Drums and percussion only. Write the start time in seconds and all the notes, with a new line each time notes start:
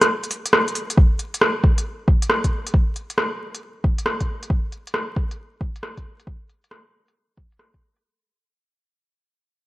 0.01 cross-stick, closed hi-hat
0.23 closed hi-hat
0.31 open hi-hat
0.46 closed hi-hat
0.53 cross-stick
0.68 closed hi-hat
0.75 open hi-hat
0.90 closed hi-hat
0.98 kick
1.19 closed hi-hat
1.34 closed hi-hat
1.41 cross-stick
1.64 kick
1.78 closed hi-hat
2.08 kick
2.22 closed hi-hat
2.30 cross-stick
2.44 kick, closed hi-hat
2.67 closed hi-hat
2.74 kick
2.96 closed hi-hat
3.10 closed hi-hat
3.18 cross-stick
3.55 closed hi-hat
3.84 kick
3.98 closed hi-hat
4.06 cross-stick
4.20 kick, closed hi-hat
4.43 closed hi-hat
4.50 kick
4.72 closed hi-hat
4.87 closed hi-hat
4.94 cross-stick
5.16 kick
5.31 closed hi-hat
5.61 kick
5.76 closed hi-hat
5.83 cross-stick
5.97 kick, closed hi-hat
6.20 closed hi-hat
6.27 kick
6.50 closed hi-hat
6.64 closed hi-hat
6.71 cross-stick
7.08 closed hi-hat
7.37 kick
7.52 closed hi-hat
7.59 cross-stick
7.74 kick, closed hi-hat
7.96 closed hi-hat